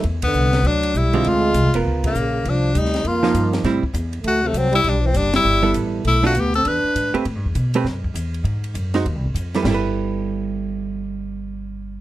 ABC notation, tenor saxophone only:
X:1
M:4/4
L:1/8
Q:"Swing" 1/4=200
K:G
V:1 name="Tenor saxophone"
z B,3 D2 E2 | =F3 z2 ^A,3 | D2 _E2 =F3 z | z4 F A, C E |
D C D E3 z2 | E F G A B3 z | z8 | z8 |
z8 | z8 |]